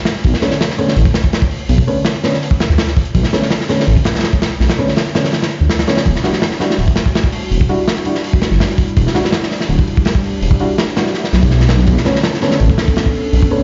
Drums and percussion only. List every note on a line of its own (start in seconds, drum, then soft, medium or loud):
0.05 snare loud
0.05 open hi-hat medium
0.16 snare soft
0.24 kick loud
0.24 open hi-hat medium
0.34 snare medium
0.41 snare medium
0.41 open hi-hat medium
0.51 snare medium
0.61 snare loud
0.61 open hi-hat medium
0.70 snare medium
0.79 open hi-hat medium
0.88 snare medium
0.96 open hi-hat medium
1.05 kick medium
1.14 snare loud
1.14 open hi-hat medium
1.24 kick medium
1.33 snare loud
1.33 open hi-hat medium
1.42 kick loud
1.51 open hi-hat medium
1.69 open hi-hat medium
1.78 kick medium
1.88 open hi-hat medium
2.05 snare loud
2.05 open hi-hat medium
2.14 snare soft
2.24 snare medium
2.24 open hi-hat medium
2.34 snare soft
2.43 open hi-hat medium
2.51 kick medium
2.60 snare loud
2.60 open hi-hat medium
2.69 snare soft
2.78 snare loud
2.78 open hi-hat medium
2.87 snare soft
2.96 kick medium
2.96 open hi-hat medium
3.05 closed hi-hat soft
3.15 kick medium
3.15 open hi-hat medium
3.23 snare medium
3.32 snare medium
3.32 open hi-hat medium
3.42 snare medium
3.50 snare loud
3.50 open hi-hat medium
3.61 snare medium
3.69 snare soft
3.69 open hi-hat medium
3.80 snare soft
3.88 open hi-hat medium
3.97 kick loud
4.04 snare loud
4.04 open hi-hat medium
4.15 snare medium
4.15 open hi-hat medium
4.19 snare medium
4.19 open hi-hat medium
4.24 snare loud
4.24 open hi-hat medium
4.33 kick loud
4.42 snare loud
4.42 open hi-hat medium
4.51 snare soft
4.61 snare soft
4.61 open hi-hat medium
4.70 snare loud
4.70 open hi-hat medium
4.78 snare soft
4.88 snare soft
4.88 open hi-hat medium
4.96 snare loud
4.96 open hi-hat medium
5.06 snare soft
5.15 snare loud
5.15 open hi-hat medium
5.24 snare medium
5.24 open hi-hat medium
5.32 snare loud
5.32 open hi-hat medium
5.42 snare loud
5.42 open hi-hat medium
5.70 snare medium
5.70 open hi-hat medium
5.79 snare medium
5.79 open hi-hat medium
5.87 snare loud
5.87 open hi-hat medium
5.97 snare loud
5.97 open hi-hat medium
6.06 kick loud
6.06 open hi-hat medium
6.15 snare medium
6.24 snare medium
6.24 open hi-hat medium
6.33 snare medium
6.42 snare loud
6.42 open hi-hat medium
6.51 snare medium
6.60 snare medium
6.60 open hi-hat medium
6.70 snare medium
6.79 open hi-hat medium
6.88 kick medium
6.96 snare loud
6.96 open hi-hat medium
7.06 kick medium
7.15 snare loud
7.15 open hi-hat medium
7.24 kick medium
7.32 open hi-hat medium
7.52 open hi-hat medium
7.61 kick loud
7.69 open hi-hat medium
7.88 snare loud
7.88 open hi-hat medium
7.97 snare soft
8.05 open hi-hat medium
8.15 snare soft
8.24 open hi-hat medium
8.33 kick medium
8.42 snare medium
8.42 open hi-hat medium
8.52 snare soft
8.60 snare medium
8.60 open hi-hat medium
8.70 snare soft
8.78 kick medium
8.78 open hi-hat medium
8.88 closed hi-hat soft
8.97 kick loud
8.97 open hi-hat medium
9.07 snare medium
9.15 snare medium
9.15 open hi-hat medium
9.25 snare medium
9.32 snare loud
9.32 open hi-hat medium
9.43 snare medium
9.51 snare soft
9.51 open hi-hat medium
9.61 snare medium
9.70 open hi-hat medium
9.79 kick medium
9.88 open hi-hat medium
9.97 kick loud
10.05 snare loud
10.05 open hi-hat medium
10.15 kick medium
10.24 open hi-hat medium
10.42 open hi-hat medium
10.51 kick loud
10.59 open hi-hat medium
10.78 snare loud
10.78 open hi-hat medium
10.88 snare soft
10.97 snare loud
10.97 open hi-hat medium
11.06 snare soft
11.14 snare soft
11.14 open hi-hat medium
11.24 snare soft
11.33 snare medium
11.33 open hi-hat medium
11.43 kick loud
11.43 open hi-hat medium
11.51 snare medium
11.60 snare soft
11.60 open hi-hat medium
11.69 snare loud
11.69 open hi-hat medium
11.79 snare soft
11.87 kick loud
11.87 open hi-hat medium
11.97 snare medium
12.05 snare medium
12.05 open hi-hat medium
12.15 snare medium
12.23 snare loud
12.23 open hi-hat medium
12.34 snare medium
12.42 snare medium
12.42 open hi-hat medium
12.51 snare medium
12.60 open hi-hat medium
12.70 kick medium
12.78 snare loud
12.78 open hi-hat medium
12.88 kick loud
12.96 snare loud
12.96 open hi-hat medium
13.06 kick medium
13.14 open hi-hat medium
13.33 open hi-hat medium
13.42 kick medium
13.51 open hi-hat medium